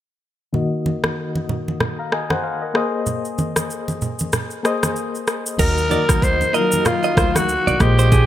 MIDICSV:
0, 0, Header, 1, 7, 480
1, 0, Start_track
1, 0, Tempo, 631579
1, 410, Time_signature, 4, 2, 24, 8
1, 6278, End_track
2, 0, Start_track
2, 0, Title_t, "Clean electric guitar"
2, 0, Program_c, 0, 27
2, 4252, Note_on_c, 0, 70, 114
2, 4353, Note_off_c, 0, 70, 0
2, 4493, Note_on_c, 0, 74, 72
2, 4594, Note_off_c, 0, 74, 0
2, 4973, Note_on_c, 0, 75, 78
2, 5074, Note_off_c, 0, 75, 0
2, 5352, Note_on_c, 0, 75, 75
2, 5425, Note_off_c, 0, 75, 0
2, 5452, Note_on_c, 0, 72, 70
2, 5553, Note_off_c, 0, 72, 0
2, 5831, Note_on_c, 0, 74, 77
2, 5904, Note_off_c, 0, 74, 0
2, 6072, Note_on_c, 0, 72, 76
2, 6145, Note_off_c, 0, 72, 0
2, 6172, Note_on_c, 0, 68, 92
2, 6273, Note_off_c, 0, 68, 0
2, 6278, End_track
3, 0, Start_track
3, 0, Title_t, "Synth keys"
3, 0, Program_c, 1, 88
3, 400, Note_on_c, 1, 51, 81
3, 407, Note_on_c, 1, 58, 76
3, 413, Note_on_c, 1, 66, 75
3, 420, Note_on_c, 1, 75, 92
3, 568, Control_c, 1, 64, 127
3, 1308, Note_off_c, 1, 51, 0
3, 1312, Note_off_c, 1, 58, 0
3, 1315, Note_off_c, 1, 66, 0
3, 1318, Note_off_c, 1, 75, 0
3, 1510, Note_on_c, 1, 82, 63
3, 1514, Note_on_c, 1, 77, 53
3, 1605, Note_off_c, 1, 82, 0
3, 1608, Note_off_c, 1, 77, 0
3, 1611, Note_on_c, 1, 80, 71
3, 1616, Note_on_c, 1, 75, 59
3, 1743, Note_off_c, 1, 80, 0
3, 1746, Note_off_c, 1, 75, 0
3, 1748, Note_on_c, 1, 78, 69
3, 1753, Note_on_c, 1, 72, 58
3, 1844, Note_off_c, 1, 72, 0
3, 1845, Note_off_c, 1, 78, 0
3, 1849, Note_on_c, 1, 77, 67
3, 1854, Note_on_c, 1, 72, 53
3, 1982, Note_off_c, 1, 77, 0
3, 1984, Note_off_c, 1, 72, 0
3, 1989, Note_on_c, 1, 75, 60
3, 1994, Note_on_c, 1, 70, 50
3, 2081, Note_on_c, 1, 58, 87
3, 2088, Note_on_c, 1, 68, 80
3, 2091, Note_off_c, 1, 75, 0
3, 2094, Note_on_c, 1, 72, 80
3, 2100, Control_c, 1, 64, 0
3, 2100, Note_on_c, 1, 75, 99
3, 2220, Note_off_c, 1, 70, 0
3, 2230, Control_c, 1, 64, 127
3, 2989, Note_off_c, 1, 58, 0
3, 2992, Note_off_c, 1, 68, 0
3, 2995, Note_off_c, 1, 72, 0
3, 2999, Note_off_c, 1, 75, 0
3, 3520, Note_on_c, 1, 58, 81
3, 3526, Note_on_c, 1, 68, 76
3, 3533, Note_on_c, 1, 72, 77
3, 3538, Note_on_c, 1, 75, 95
3, 4202, Note_off_c, 1, 58, 0
3, 4206, Note_off_c, 1, 68, 0
3, 4209, Note_off_c, 1, 72, 0
3, 4212, Note_off_c, 1, 75, 0
3, 4240, Note_on_c, 1, 51, 77
3, 4246, Note_on_c, 1, 58, 70
3, 4253, Note_on_c, 1, 66, 71
3, 4259, Note_on_c, 1, 75, 82
3, 4260, Control_c, 1, 64, 0
3, 4387, Control_c, 1, 64, 127
3, 4471, Note_off_c, 1, 51, 0
3, 4474, Note_off_c, 1, 58, 0
3, 4477, Note_off_c, 1, 66, 0
3, 4480, Note_on_c, 1, 63, 76
3, 4481, Note_off_c, 1, 75, 0
3, 4487, Note_on_c, 1, 58, 67
3, 4493, Note_on_c, 1, 66, 67
3, 4499, Note_on_c, 1, 75, 81
3, 4937, Note_off_c, 1, 63, 0
3, 4940, Note_off_c, 1, 58, 0
3, 4943, Note_off_c, 1, 66, 0
3, 4946, Note_off_c, 1, 75, 0
3, 4961, Note_on_c, 1, 63, 72
3, 4967, Note_on_c, 1, 58, 66
3, 4974, Note_on_c, 1, 65, 53
3, 4980, Note_on_c, 1, 75, 82
3, 5023, Note_on_c, 1, 54, 64
3, 5029, Note_off_c, 1, 65, 0
3, 5869, Note_off_c, 1, 63, 0
3, 5872, Note_off_c, 1, 58, 0
3, 5878, Note_off_c, 1, 75, 0
3, 5900, Note_off_c, 1, 54, 0
3, 5921, Note_on_c, 1, 58, 81
3, 5928, Note_on_c, 1, 56, 75
3, 5934, Note_on_c, 1, 72, 73
3, 5939, Control_c, 1, 64, 0
3, 5940, Note_on_c, 1, 75, 91
3, 6054, Control_c, 1, 64, 127
3, 6278, Note_off_c, 1, 56, 0
3, 6278, Note_off_c, 1, 58, 0
3, 6278, Note_off_c, 1, 72, 0
3, 6278, Note_off_c, 1, 75, 0
3, 6278, End_track
4, 0, Start_track
4, 0, Title_t, "Alto saxophone"
4, 0, Program_c, 2, 65
4, 4256, Note_on_c, 2, 70, 115
4, 4737, Note_on_c, 2, 72, 103
4, 4749, Note_off_c, 2, 70, 0
4, 4976, Note_on_c, 2, 70, 105
4, 4987, Note_off_c, 2, 72, 0
4, 5217, Note_on_c, 2, 65, 109
4, 5228, Note_off_c, 2, 70, 0
4, 5595, Note_on_c, 2, 66, 99
4, 5606, Note_off_c, 2, 65, 0
4, 5936, Note_on_c, 2, 67, 115
4, 5947, Note_off_c, 2, 66, 0
4, 6278, Note_off_c, 2, 67, 0
4, 6278, End_track
5, 0, Start_track
5, 0, Title_t, "Analog synth pad"
5, 0, Program_c, 3, 89
5, 4251, Note_on_c, 3, 54, 79
5, 4251, Note_on_c, 3, 63, 74
5, 4251, Note_on_c, 3, 70, 87
5, 5914, Note_off_c, 3, 54, 0
5, 5914, Note_off_c, 3, 70, 0
5, 5933, Note_on_c, 3, 56, 78
5, 5933, Note_on_c, 3, 58, 73
5, 6278, Note_off_c, 3, 56, 0
5, 6278, Note_off_c, 3, 58, 0
5, 6278, Note_off_c, 3, 63, 0
5, 6278, End_track
6, 0, Start_track
6, 0, Title_t, "Upright bass"
6, 0, Program_c, 4, 32
6, 4250, Note_on_c, 4, 39, 109
6, 4530, Note_off_c, 4, 39, 0
6, 4631, Note_on_c, 4, 38, 86
6, 4881, Note_off_c, 4, 38, 0
6, 5450, Note_on_c, 4, 38, 92
6, 5729, Note_off_c, 4, 38, 0
6, 5830, Note_on_c, 4, 36, 88
6, 5904, Note_off_c, 4, 36, 0
6, 5930, Note_on_c, 4, 34, 106
6, 6278, Note_off_c, 4, 34, 0
6, 6278, End_track
7, 0, Start_track
7, 0, Title_t, "Drums"
7, 410, Note_on_c, 9, 64, 73
7, 486, Note_off_c, 9, 64, 0
7, 653, Note_on_c, 9, 63, 79
7, 729, Note_off_c, 9, 63, 0
7, 788, Note_on_c, 9, 37, 84
7, 791, Note_on_c, 9, 63, 62
7, 864, Note_off_c, 9, 37, 0
7, 867, Note_off_c, 9, 63, 0
7, 1030, Note_on_c, 9, 63, 67
7, 1106, Note_off_c, 9, 63, 0
7, 1135, Note_on_c, 9, 64, 82
7, 1211, Note_off_c, 9, 64, 0
7, 1278, Note_on_c, 9, 63, 69
7, 1354, Note_off_c, 9, 63, 0
7, 1371, Note_on_c, 9, 64, 83
7, 1372, Note_on_c, 9, 37, 86
7, 1447, Note_off_c, 9, 64, 0
7, 1448, Note_off_c, 9, 37, 0
7, 1613, Note_on_c, 9, 37, 84
7, 1689, Note_off_c, 9, 37, 0
7, 1750, Note_on_c, 9, 63, 75
7, 1751, Note_on_c, 9, 37, 84
7, 1826, Note_off_c, 9, 63, 0
7, 1827, Note_off_c, 9, 37, 0
7, 2090, Note_on_c, 9, 37, 86
7, 2166, Note_off_c, 9, 37, 0
7, 2328, Note_on_c, 9, 82, 75
7, 2330, Note_on_c, 9, 64, 74
7, 2404, Note_off_c, 9, 82, 0
7, 2406, Note_off_c, 9, 64, 0
7, 2470, Note_on_c, 9, 82, 44
7, 2546, Note_off_c, 9, 82, 0
7, 2570, Note_on_c, 9, 82, 53
7, 2573, Note_on_c, 9, 63, 78
7, 2646, Note_off_c, 9, 82, 0
7, 2649, Note_off_c, 9, 63, 0
7, 2707, Note_on_c, 9, 37, 86
7, 2709, Note_on_c, 9, 82, 90
7, 2711, Note_on_c, 9, 63, 61
7, 2783, Note_off_c, 9, 37, 0
7, 2785, Note_off_c, 9, 82, 0
7, 2787, Note_off_c, 9, 63, 0
7, 2814, Note_on_c, 9, 82, 68
7, 2890, Note_off_c, 9, 82, 0
7, 2950, Note_on_c, 9, 63, 71
7, 2956, Note_on_c, 9, 82, 43
7, 3026, Note_off_c, 9, 63, 0
7, 3032, Note_off_c, 9, 82, 0
7, 3051, Note_on_c, 9, 82, 46
7, 3055, Note_on_c, 9, 64, 81
7, 3127, Note_off_c, 9, 82, 0
7, 3131, Note_off_c, 9, 64, 0
7, 3185, Note_on_c, 9, 82, 96
7, 3199, Note_on_c, 9, 63, 67
7, 3261, Note_off_c, 9, 82, 0
7, 3275, Note_off_c, 9, 63, 0
7, 3287, Note_on_c, 9, 82, 74
7, 3291, Note_on_c, 9, 37, 85
7, 3293, Note_on_c, 9, 64, 81
7, 3363, Note_off_c, 9, 82, 0
7, 3367, Note_off_c, 9, 37, 0
7, 3369, Note_off_c, 9, 64, 0
7, 3424, Note_on_c, 9, 82, 45
7, 3500, Note_off_c, 9, 82, 0
7, 3534, Note_on_c, 9, 37, 81
7, 3534, Note_on_c, 9, 82, 48
7, 3610, Note_off_c, 9, 37, 0
7, 3610, Note_off_c, 9, 82, 0
7, 3671, Note_on_c, 9, 37, 85
7, 3671, Note_on_c, 9, 63, 75
7, 3672, Note_on_c, 9, 82, 87
7, 3747, Note_off_c, 9, 37, 0
7, 3747, Note_off_c, 9, 63, 0
7, 3748, Note_off_c, 9, 82, 0
7, 3770, Note_on_c, 9, 82, 62
7, 3846, Note_off_c, 9, 82, 0
7, 3913, Note_on_c, 9, 82, 50
7, 3989, Note_off_c, 9, 82, 0
7, 4007, Note_on_c, 9, 82, 58
7, 4010, Note_on_c, 9, 37, 88
7, 4083, Note_off_c, 9, 82, 0
7, 4086, Note_off_c, 9, 37, 0
7, 4150, Note_on_c, 9, 82, 90
7, 4226, Note_off_c, 9, 82, 0
7, 4249, Note_on_c, 9, 82, 81
7, 4250, Note_on_c, 9, 49, 92
7, 4250, Note_on_c, 9, 64, 78
7, 4251, Note_on_c, 9, 36, 106
7, 4325, Note_off_c, 9, 82, 0
7, 4326, Note_off_c, 9, 49, 0
7, 4326, Note_off_c, 9, 64, 0
7, 4327, Note_off_c, 9, 36, 0
7, 4391, Note_on_c, 9, 82, 46
7, 4467, Note_off_c, 9, 82, 0
7, 4491, Note_on_c, 9, 82, 55
7, 4493, Note_on_c, 9, 63, 85
7, 4567, Note_off_c, 9, 82, 0
7, 4569, Note_off_c, 9, 63, 0
7, 4628, Note_on_c, 9, 37, 90
7, 4630, Note_on_c, 9, 82, 97
7, 4631, Note_on_c, 9, 36, 90
7, 4631, Note_on_c, 9, 63, 65
7, 4704, Note_off_c, 9, 37, 0
7, 4706, Note_off_c, 9, 82, 0
7, 4707, Note_off_c, 9, 36, 0
7, 4707, Note_off_c, 9, 63, 0
7, 4730, Note_on_c, 9, 36, 85
7, 4735, Note_on_c, 9, 82, 68
7, 4806, Note_off_c, 9, 36, 0
7, 4811, Note_off_c, 9, 82, 0
7, 4870, Note_on_c, 9, 63, 73
7, 4877, Note_on_c, 9, 82, 51
7, 4946, Note_off_c, 9, 63, 0
7, 4953, Note_off_c, 9, 82, 0
7, 4972, Note_on_c, 9, 82, 49
7, 5048, Note_off_c, 9, 82, 0
7, 5105, Note_on_c, 9, 82, 101
7, 5118, Note_on_c, 9, 63, 69
7, 5181, Note_off_c, 9, 82, 0
7, 5194, Note_off_c, 9, 63, 0
7, 5207, Note_on_c, 9, 82, 75
7, 5211, Note_on_c, 9, 64, 89
7, 5212, Note_on_c, 9, 37, 90
7, 5283, Note_off_c, 9, 82, 0
7, 5287, Note_off_c, 9, 64, 0
7, 5288, Note_off_c, 9, 37, 0
7, 5344, Note_on_c, 9, 82, 45
7, 5420, Note_off_c, 9, 82, 0
7, 5450, Note_on_c, 9, 36, 105
7, 5453, Note_on_c, 9, 37, 89
7, 5454, Note_on_c, 9, 82, 50
7, 5526, Note_off_c, 9, 36, 0
7, 5529, Note_off_c, 9, 37, 0
7, 5530, Note_off_c, 9, 82, 0
7, 5590, Note_on_c, 9, 63, 76
7, 5592, Note_on_c, 9, 37, 89
7, 5593, Note_on_c, 9, 82, 93
7, 5666, Note_off_c, 9, 63, 0
7, 5668, Note_off_c, 9, 37, 0
7, 5669, Note_off_c, 9, 82, 0
7, 5690, Note_on_c, 9, 82, 64
7, 5766, Note_off_c, 9, 82, 0
7, 5834, Note_on_c, 9, 82, 52
7, 5910, Note_off_c, 9, 82, 0
7, 5928, Note_on_c, 9, 82, 61
7, 5930, Note_on_c, 9, 36, 87
7, 5931, Note_on_c, 9, 37, 92
7, 6004, Note_off_c, 9, 82, 0
7, 6006, Note_off_c, 9, 36, 0
7, 6007, Note_off_c, 9, 37, 0
7, 6071, Note_on_c, 9, 82, 96
7, 6147, Note_off_c, 9, 82, 0
7, 6169, Note_on_c, 9, 64, 79
7, 6171, Note_on_c, 9, 36, 104
7, 6171, Note_on_c, 9, 82, 78
7, 6245, Note_off_c, 9, 64, 0
7, 6247, Note_off_c, 9, 36, 0
7, 6247, Note_off_c, 9, 82, 0
7, 6278, End_track
0, 0, End_of_file